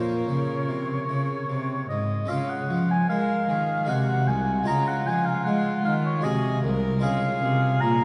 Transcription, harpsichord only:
0.00 0.24 A#2 soft
0.00 2.23 A#3 soft
0.00 2.24 C#4 soft
0.00 2.25 F4 soft
0.28 0.65 C#3 soft
0.69 1.05 C3 soft
1.09 1.45 C#3 soft
1.50 1.86 C3 soft
1.91 2.26 G#2 soft
2.25 3.09 G#3 soft
2.25 3.83 C#4 soft
2.25 3.84 F4 soft
2.30 2.66 C#3 soft
2.70 3.06 F3 soft
3.10 3.45 G#3 soft
3.50 3.85 D#3 soft
3.85 4.62 G#3 soft
3.85 4.63 D#4 soft
3.85 4.64 G#4 soft
3.89 4.24 C3 soft
4.29 4.64 C2 soft
4.64 5.46 G#3 soft
4.64 6.19 F4 soft
4.64 6.20 G#4 soft
4.68 5.03 C#3 soft
5.07 5.42 F3 soft
5.47 5.82 G#3 medium
5.86 6.21 D#3 soft
6.21 6.98 G#3 soft
6.21 6.99 F#4 soft
6.21 7.00 G#4 soft
6.25 6.60 C3 soft
6.64 6.99 C2 soft
6.99 7.39 G#3 soft
6.99 8.04 F4 soft
6.99 8.04 G#4 soft
7.04 7.39 C#3 soft
7.43 7.78 C3 soft
7.82 8.04 A#2 medium

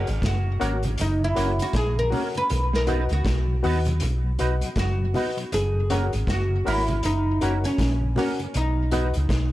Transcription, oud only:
0.00 0.25 G#4 medium
0.26 0.96 F#4 medium
1.01 1.23 D#4 medium
1.24 1.62 E4 medium
1.62 1.76 F#4 loud
1.76 1.96 G#4 loud
1.99 2.37 A#4 medium
2.37 2.71 B4 loud
2.75 3.12 A#4 loud
3.13 4.59 F#4 loud
4.79 5.54 F#4 loud
5.54 6.29 G#4 medium
6.30 6.67 F#4 loud
6.68 7.05 E4 medium
7.05 7.65 D#4 medium
7.65 8.18 C#4 medium
8.19 8.53 C#4 medium
8.57 9.52 D#4 medium

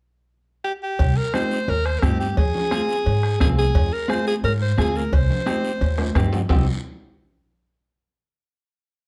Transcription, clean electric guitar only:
1.34 1.58 C4 medium
1.34 1.58 D#4 medium
1.34 1.58 G4 medium
2.02 2.27 C4 medium
2.02 2.27 D#4 soft
2.02 2.27 G4 medium
2.71 2.95 C4 medium
2.71 2.96 F4 medium
2.71 2.96 G#4 medium
3.40 3.65 C4 medium
3.40 3.65 F4 medium
3.40 3.65 G#4 medium
4.08 4.33 C4 medium
4.08 4.33 F4 medium
4.08 4.33 G#4 medium
4.78 5.02 C4 medium
4.78 5.02 F4 medium
4.78 5.03 G#4 medium
5.46 5.71 C4 medium
5.46 5.71 D#4 medium
5.46 5.71 G4 medium
6.16 6.40 C4 medium
6.16 6.40 D#4 medium
6.16 6.41 G4 medium
6.50 6.66 C4 medium
6.50 6.66 D#4 medium
6.50 6.66 G4 medium

